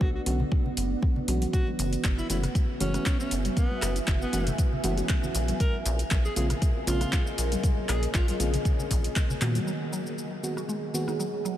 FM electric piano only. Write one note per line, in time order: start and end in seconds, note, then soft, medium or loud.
0.26 0.37 D3 medium
0.26 0.37 A3 medium
0.26 0.37 B3 medium
0.26 0.37 C#4 medium
0.26 0.37 F#4 medium
1.28 2.27 E3 medium
1.28 2.27 G#3 medium
1.28 2.27 A3 medium
1.28 2.27 C#4 medium
1.28 2.27 F#4 medium
2.30 2.40 E3 medium
2.30 2.40 G#3 medium
2.30 2.40 A3 medium
2.30 2.40 C#4 medium
2.30 2.41 F#4 medium
2.80 2.91 E3 medium
2.80 2.91 G#3 medium
2.80 2.91 A3 medium
2.80 2.91 C#4 medium
2.80 2.91 F#4 loud
2.94 3.09 E3 medium
2.94 3.09 G#3 medium
2.94 3.09 A3 medium
2.94 3.10 C#4 medium
2.94 3.10 F#4 medium
4.33 4.44 E3 medium
4.33 4.44 G#3 medium
4.33 4.44 A3 medium
4.33 4.44 C#4 medium
4.33 4.44 F#4 medium
4.84 4.94 E3 loud
4.84 4.94 G#3 medium
4.84 4.94 A3 medium
4.84 4.94 C#4 medium
4.84 4.94 F#4 loud
4.97 5.13 E3 medium
4.97 5.13 G#3 medium
4.97 5.13 A3 medium
4.97 5.13 C#4 medium
4.97 5.13 F#4 medium
6.36 6.47 C#3 medium
6.36 6.47 G#3 medium
6.36 6.47 A#3 medium
6.36 6.47 C4 medium
6.36 6.47 F4 medium
6.87 6.98 C#3 medium
6.87 6.98 G#3 medium
6.87 6.98 A#3 medium
6.87 6.98 C4 medium
6.87 6.98 F4 loud
7.01 7.16 C#3 medium
7.01 7.16 G#3 medium
7.01 7.16 A#3 medium
7.01 7.16 C4 medium
7.01 7.16 F4 medium
8.40 8.51 C#3 medium
8.40 8.51 G#3 medium
8.40 8.51 A#3 medium
8.40 8.51 C4 medium
8.40 8.51 F4 medium
9.41 9.92 D#3 medium
9.41 9.92 G#3 medium
9.41 9.92 A#3 medium
9.41 9.92 B3 medium
9.41 9.92 F#4 medium
10.43 10.54 D#3 medium
10.43 10.54 G#3 medium
10.43 10.54 A#3 medium
10.43 10.54 B3 medium
10.43 10.54 F#4 medium
10.94 11.04 D#3 medium
10.94 11.04 G#3 medium
10.94 11.04 A#3 medium
10.94 11.05 B3 medium
10.94 11.05 F#4 loud
11.08 11.23 D#3 medium
11.08 11.23 G#3 medium
11.08 11.23 A#3 medium
11.08 11.23 B3 medium
11.08 11.23 F#4 medium